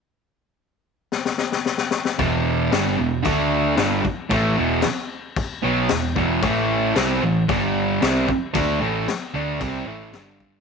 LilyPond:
<<
  \new Staff \with { instrumentName = "Distorted electric guitar" } { \clef bass \time 4/4 \key a \major \tempo 4 = 113 r1 | <e, b, e>4 <g, d g>8 <e, b,>8 <d a d'>4 <g, d g>8 r8 | <a, e a>8 <e, b, e>8 r4. <b, fis b>8 <e, b,>8 <e, b, e>8 | <a, e a>4 <c g c'>8 <a, e>8 <g, d g>4 <c g c'>8 r8 |
<d a d'>8 <a, e a>8 r8 <d a d'>8 <c g c'>8 <a, e a>8 <g, d g>4 | }
  \new Staff \with { instrumentName = "Picked electric bass" } { \clef bass \time 4/4 \key a \major r1 | e,,4 g,,8 e,,8 d,4 g,,8 r8 | a,,8 e,,8 r4. b,,8 e,,8 e,,8 | a,,4 c,8 a,,8 g,,4 c,8 r8 |
d,8 a,,8 r8 d,8 c,8 a,,8 g,,4 | }
  \new DrumStaff \with { instrumentName = "Drums" } \drummode { \time 4/4 r4 r4 sn16 sn16 sn16 sn16 sn16 sn16 sn16 sn16 | <cymc bd>4 <cymc sn>4 <cymc bd>4 <cymc sn>8 bd8 | <cymc bd>4 <cymc sn>4 <cymc bd>4 <cymc sn>8 bd8 | <cymc bd>4 <cymc sn>4 <cymc bd>4 <cymc sn>8 bd8 |
<cymc bd>4 <cymc sn>4 <cymc bd>4 <cymc sn>8 bd8 | }
>>